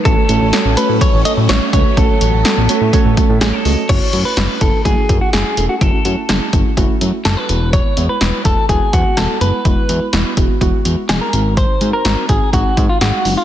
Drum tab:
CC |--------|--------|x-------|--------|
HH |xxxxxxxx|xxxxxxxo|xxxxxxxx|xxxxxxxx|
SD |--o---o-|--o---o-|--o---o-|--o---o-|
BD |o---o--o|o---oo--|o--ooo--|o--oo---|

CC |--------|--------|--------|
HH |xxxxxxxx|xxxxxxxx|xxxxxxxo|
SD |--o---o-|--o---o-|--o---o-|
BD |o--ooo--|o--oo---|o--ooo--|